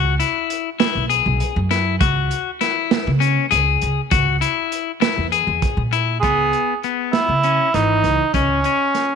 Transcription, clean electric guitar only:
0.00 0.14 F#4 loud
0.20 0.69 E4 medium
0.80 1.04 E4 medium
1.10 1.59 G#4 medium
1.71 1.95 E4 medium
2.00 2.50 F#4 medium
2.61 3.10 E4 medium
3.20 3.45 C#4 medium
3.51 4.00 G#4 medium
4.11 4.36 F#4 medium
4.41 4.91 E4 medium
5.01 5.26 E4 medium
5.32 5.82 G#4 medium
5.93 6.17 E4 medium
6.24 6.73 B3 medium
6.84 7.33 B3 medium
7.44 7.68 C#4 medium
7.74 8.23 E3 medium
8.34 8.59 C#4 medium
8.65 9.14 C#4 medium

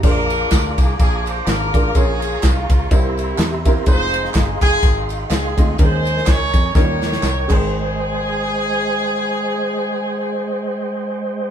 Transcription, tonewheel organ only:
0.03 2.88 G#4 medium
0.03 2.88 F5 medium
0.03 1.93 A#5 medium
0.03 1.93 D6 medium
1.96 3.86 A#5 medium
1.96 2.91 C#6 medium
2.92 3.87 G4 medium
2.92 3.86 E5 medium
2.92 5.77 C6 medium
3.88 5.77 G#4 medium
3.88 7.46 D#5 medium
3.88 5.77 F5 medium
5.79 6.74 A#4 medium
5.79 6.74 G#5 medium
6.75 7.49 A#4 medium
6.75 7.49 G5 medium
7.50 11.51 G#3 medium
7.50 11.51 C5 medium
7.50 11.51 D#5 medium
7.50 11.51 G5 medium

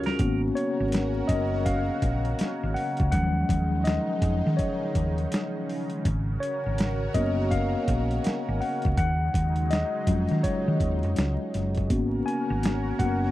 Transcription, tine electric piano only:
0.00 0.19 C#4 medium
0.00 0.22 F4 medium
0.00 0.20 F#4 medium
0.00 0.21 A#4 medium
0.19 1.25 A#3 medium
0.19 1.25 B3 medium
0.19 1.25 C#4 medium
0.19 1.25 F#4 medium
0.55 1.31 C#5 medium
1.27 1.44 D#5 medium
1.66 2.35 F5 loud
2.74 3.10 F#5 loud
3.12 3.65 F3 medium
3.12 3.64 F#3 medium
3.12 3.64 G#3 medium
3.12 3.64 C#4 medium
3.12 3.87 F#5 loud
3.84 4.60 D#5 medium
4.57 5.63 C#5 medium
6.40 7.16 C#5 medium
7.14 8.94 A#3 medium
7.14 8.94 B3 medium
7.14 8.94 C#4 soft
7.14 8.94 F#4 medium
7.14 7.48 D#5 medium
7.51 8.20 F5 loud
8.61 8.96 F#5 medium
8.98 9.73 F#5 loud
9.70 10.46 D#5 loud
10.07 11.86 F#3 medium
10.07 11.86 G#3 medium
10.07 11.86 C#4 medium
10.07 11.87 F4 medium
10.43 11.49 C#5 loud
11.89 12.99 A#3 medium
11.89 12.99 B3 medium
11.89 12.99 C#4 medium
11.89 13.00 F#4 medium
12.26 13.02 G#5 loud
12.99 13.31 A#3 soft
12.99 13.31 B3 soft
12.99 13.31 C#4 soft
12.99 13.31 F#4 medium
12.99 13.31 F#5 loud

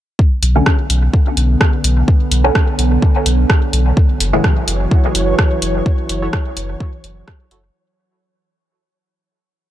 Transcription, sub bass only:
0.43 0.62 B1 medium
0.90 1.09 B1 medium
1.37 1.56 B1 medium
1.84 2.03 B1 medium
2.31 2.51 B1 loud
2.79 2.98 B1 medium
3.26 3.45 B1 medium
3.73 3.92 B1 medium
4.20 4.40 F#1 loud
4.68 4.87 F#1 medium
5.15 5.34 F#1 medium
5.62 5.81 F#1 medium
6.10 6.29 F#1 loud
6.57 6.76 F#1 medium
7.04 7.23 F#1 medium
7.51 7.70 F#1 medium

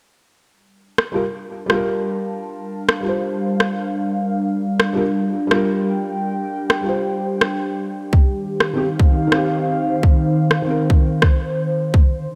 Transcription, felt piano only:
1.12 1.20 G3 medium
1.12 1.21 F4 medium
1.12 1.22 A#4 medium
1.66 2.99 G3 medium
1.70 3.01 F4 medium
1.74 3.03 A#4 medium
3.01 4.89 G3 medium
3.01 4.91 F4 medium
3.08 4.93 C5 medium
4.93 5.01 G3 medium
4.93 5.02 F4 medium
4.97 5.03 A#4 medium
5.47 6.79 G3 medium
5.51 6.82 F4 medium
5.55 6.84 A#4 medium
6.81 8.10 G3 medium
6.81 8.12 F4 medium
6.89 8.14 C5 medium
8.73 8.81 D#3 medium
8.73 8.82 C4 medium
8.73 8.83 G4 medium
9.27 10.60 D#3 medium
9.32 10.62 C4 medium
9.36 10.64 G4 medium
10.62 11.91 D#3 medium
10.66 11.93 C4 medium
10.66 11.95 A#4 medium

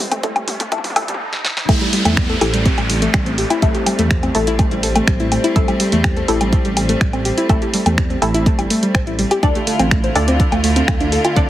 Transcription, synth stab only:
0.00 0.22 A3 medium
0.00 0.22 E4 medium
0.00 0.22 A4 loud
0.23 0.70 A3 medium
0.23 0.70 E4 medium
0.23 0.70 A4 loud
0.72 0.94 A3 medium
0.72 0.94 E4 medium
0.72 0.94 A4 loud
0.96 1.18 A3 loud
0.96 1.18 E4 medium
0.96 1.18 A4 loud
1.69 2.39 A3 medium
1.69 2.39 E4 medium
1.69 2.39 A4 loud
2.41 3.60 A3 medium
2.41 3.59 E4 medium
2.41 3.60 A4 medium
3.62 4.32 A3 loud
3.62 4.32 E4 medium
3.62 4.32 A4 loud
4.35 5.53 A3 medium
4.35 5.53 E4 medium
4.35 5.53 A4 medium
5.56 6.26 A3 medium
5.56 6.26 E4 medium
5.56 6.26 A4 loud
6.28 7.47 A3 medium
6.28 7.47 E4 medium
6.28 7.47 A4 medium
7.49 8.19 A3 loud
7.49 8.19 E4 medium
7.49 8.19 A4 loud
8.22 9.40 A3 medium
8.22 9.40 E4 medium
8.22 9.40 A4 medium
9.43 10.13 D4 medium
9.43 10.13 A4 medium
9.43 10.13 D5 loud
10.16 11.34 D4 medium
10.16 11.34 A4 medium
10.16 11.34 D5 medium
11.36 11.49 D4 medium
11.36 11.49 A4 medium
11.36 11.49 D5 loud

